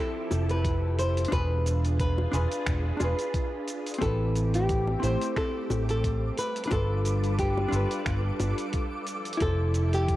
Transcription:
0.00 1.28 F3 medium
0.00 1.28 C4 medium
0.00 1.26 E4 medium
0.00 1.29 E4 medium
0.00 1.27 G4 medium
0.00 1.29 G4 medium
0.00 0.50 A4 loud
0.00 1.29 A4 medium
0.31 1.24 F1 medium
0.31 high bongo medium
0.31 cabasa medium
0.49 0.99 B4 loud
0.49 closed hi-hat soft
0.49 cabasa soft
0.64 kick loud
0.64 closed hi-hat medium
0.64 cabasa soft
0.98 1.32 C5 loud
0.98 closed hi-hat soft
0.98 cabasa medium
1.17 closed hi-hat soft
1.17 cabasa soft
1.25 2.28 D4 medium
1.25 closed hi-hat medium
1.31 2.25 E1 medium
1.31 3.99 D4 medium
1.31 2.29 F4 medium
1.31 3.99 F4 medium
1.31 3.99 G#4 medium
1.31 2.30 G#4 medium
1.31 1.99 B4 loud
1.31 kick loud
1.31 closed hi-hat soft
1.31 high bongo medium
1.31 cabasa soft
1.35 2.31 B4 loud
1.66 closed hi-hat soft
1.66 cabasa medium
1.84 closed hi-hat soft
1.84 cabasa soft
1.99 2.63 B4 medium
1.99 kick loud
1.99 closed hi-hat medium
1.99 cabasa soft
2.18 high bongo medium
2.31 2.45 E1 loud
2.31 2.96 D4 loud
2.31 2.97 F4 medium
2.31 2.98 G#4 loud
2.31 2.99 B4 loud
2.31 closed hi-hat soft
2.31 cabasa medium
2.52 closed hi-hat soft
2.52 cabasa soft
2.66 2.90 E1 medium
2.66 finger snap medium
2.66 kick loud
2.66 closed hi-hat medium
2.66 cabasa soft
2.97 3.13 E1 medium
2.97 3.96 D4 medium
2.97 3.97 F4 medium
2.97 closed hi-hat soft
2.97 high bongo medium
2.97 cabasa medium
3.02 3.99 G#4 medium
3.02 4.00 B4 loud
3.19 closed hi-hat soft
3.19 cabasa soft
3.34 kick loud
3.34 closed hi-hat soft
3.34 cabasa soft
3.68 closed hi-hat soft
3.68 cabasa medium
3.86 closed hi-hat soft
3.86 cabasa soft
3.94 closed hi-hat medium
3.98 4.94 A1 loud
3.98 6.35 A3 medium
3.98 4.98 C4 medium
3.98 6.35 C4 medium
3.98 4.99 E4 medium
3.98 6.35 G4 medium
3.98 4.56 A4 loud
3.98 10.16 D6 medium
3.98 kick loud
3.98 closed hi-hat medium
3.98 high bongo medium
3.98 cabasa soft
4.03 5.00 G4 medium
4.03 5.01 B4 loud
4.35 closed hi-hat soft
4.35 cabasa medium
4.54 5.00 G4 loud
4.54 closed hi-hat soft
4.54 cabasa soft
4.69 kick loud
4.69 closed hi-hat medium
4.69 cabasa soft
4.87 high bongo medium
5.00 5.15 A1 loud
5.00 6.34 C4 medium
5.00 6.35 E4 medium
5.00 closed hi-hat soft
5.00 cabasa medium
5.04 6.36 G4 medium
5.04 5.37 C5 loud
5.04 6.38 C5 medium
5.21 closed hi-hat soft
5.21 cabasa soft
5.36 5.89 A4 loud
5.36 finger snap medium
5.36 kick loud
5.36 closed hi-hat medium
5.36 cabasa soft
5.70 6.29 A1 medium
5.70 high bongo medium
5.70 cabasa medium
5.89 6.38 A4 loud
5.89 closed hi-hat soft
5.89 cabasa soft
6.04 kick medium
6.04 closed hi-hat medium
6.04 cabasa soft
6.37 9.05 G3 medium
6.37 9.04 F4 medium
6.37 10.16 A4 medium
6.37 9.04 B4 medium
6.37 6.65 B4 loud
6.37 closed hi-hat soft
6.37 cabasa medium
6.56 closed hi-hat soft
6.56 cabasa soft
6.64 7.67 D4 medium
6.64 6.72 B4 medium
6.64 closed hi-hat medium
6.70 7.64 G1 loud
6.70 7.68 F4 medium
6.70 7.69 A4 medium
6.70 7.35 A4 medium
6.70 kick loud
6.70 closed hi-hat medium
6.70 high bongo medium
6.70 cabasa soft
6.75 7.70 B4 loud
7.05 closed hi-hat soft
7.05 cabasa medium
7.24 closed hi-hat soft
7.24 cabasa soft
7.39 8.03 G4 medium
7.39 kick loud
7.39 closed hi-hat medium
7.39 cabasa soft
7.58 high bongo medium
7.69 7.84 G1 loud
7.69 9.03 D4 loud
7.69 9.05 F4 medium
7.73 9.06 A4 medium
7.73 9.07 B4 loud
7.73 closed hi-hat soft
7.73 cabasa medium
7.91 closed hi-hat soft
7.91 cabasa soft
8.06 8.29 G1 medium
8.06 finger snap medium
8.06 kick loud
8.06 closed hi-hat medium
8.06 cabasa soft
8.40 8.52 G1 medium
8.40 closed hi-hat soft
8.40 high bongo medium
8.40 cabasa medium
8.58 closed hi-hat soft
8.58 cabasa soft
8.73 kick medium
8.73 closed hi-hat medium
8.73 cabasa soft
9.06 10.16 F3 medium
9.06 10.16 E4 medium
9.06 10.16 G4 medium
9.06 closed hi-hat soft
9.06 cabasa medium
9.25 closed hi-hat soft
9.25 cabasa soft
9.33 closed hi-hat medium
9.38 10.16 F1 loud
9.38 10.16 E4 medium
9.38 10.16 G4 medium
9.38 kick loud
9.38 closed hi-hat medium
9.38 cabasa soft
9.42 10.16 A4 medium
9.42 9.94 A4 loud
9.42 10.16 C5 loud
9.42 high bongo medium
9.74 closed hi-hat soft
9.74 cabasa medium
9.93 10.16 G4 loud
9.93 closed hi-hat soft
9.93 cabasa soft
10.08 kick medium
10.08 closed hi-hat medium
10.08 cabasa soft

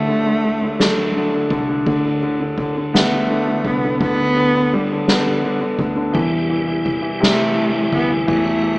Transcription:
0.00 1.47 D2 loud
0.00 0.08 D3 medium
0.00 0.75 A3 medium
0.00 0.82 A3 loud
0.08 0.24 D3 medium
0.08 ride soft
0.26 0.43 D3 medium
0.44 0.60 D3 medium
0.44 ride medium
0.62 0.96 D3 medium
0.79 1.60 F#3 medium
0.79 1.83 A3 medium
0.79 snare loud
0.79 ride medium
0.97 1.15 D3 medium
1.15 1.32 D3 medium
1.15 ride soft
1.34 1.50 D3 medium
1.50 1.84 C2 medium
1.50 1.67 D3 medium
1.50 kick medium
1.50 ride soft
1.69 1.85 D3 medium
1.86 3.61 D2 loud
1.86 2.04 D3 medium
1.86 kick loud
1.86 ride medium
2.05 2.21 D3 soft
2.22 2.39 D3 medium
2.22 ride soft
2.40 2.57 D3 medium
2.58 2.75 D3 medium
2.58 kick medium
2.58 ride medium
2.77 3.10 D3 medium
2.94 3.68 A3 loud
2.94 5.04 B3 medium
2.94 snare loud
2.94 ride medium
3.12 3.29 D3 medium
3.30 3.46 D3 medium
3.30 ride soft
3.48 3.64 D3 medium
3.65 3.98 C2 medium
3.65 3.83 D3 medium
3.65 4.01 B3 medium
3.65 kick medium
3.65 ride medium
3.84 3.99 D3 medium
4.01 5.75 D2 loud
4.01 4.17 D3 medium
4.01 4.75 B3 loud
4.01 kick loud
4.01 ride medium
4.19 4.35 D3 soft
4.37 4.53 D3 medium
4.37 ride soft
4.55 4.72 D3 medium
4.72 4.90 D3 medium
4.72 5.08 G3 medium
4.72 ride medium
4.92 5.25 D3 medium
5.07 5.85 G3 medium
5.07 6.12 B3 medium
5.07 snare loud
5.07 ride medium
5.26 5.42 D3 medium
5.43 5.59 D3 medium
5.43 ride soft
5.61 5.78 D3 medium
5.79 6.12 D2 medium
5.79 5.95 D3 medium
5.79 kick medium
5.79 ride medium
5.96 6.14 D3 medium
6.13 7.89 E2 loud
6.13 8.79 C3 medium
6.13 6.30 E3 medium
6.13 8.79 E3 medium
6.13 8.79 G3 medium
6.13 8.26 G4 medium
6.13 kick loud
6.13 ride medium
6.32 6.48 E3 soft
6.50 6.65 E3 medium
6.50 ride soft
6.67 6.83 E3 medium
6.85 7.00 E3 medium
6.85 kick medium
6.85 ride medium
7.02 7.37 E3 medium
7.20 8.79 C3 medium
7.20 7.90 A3 loud
7.20 snare loud
7.20 ride medium
7.38 7.53 E3 soft
7.55 7.72 E3 medium
7.55 ride soft
7.74 7.91 E3 medium
7.92 8.26 D2 medium
7.92 8.08 E3 medium
7.92 8.10 B3 loud
7.92 kick medium
7.92 ride medium
8.10 8.26 E3 medium
8.27 8.79 E2 loud
8.27 8.43 E3 medium
8.27 8.79 A3 loud
8.27 8.79 F#4 medium
8.27 kick loud
8.27 ride medium
8.45 8.62 E3 medium
8.63 8.79 E3 medium
8.63 ride soft

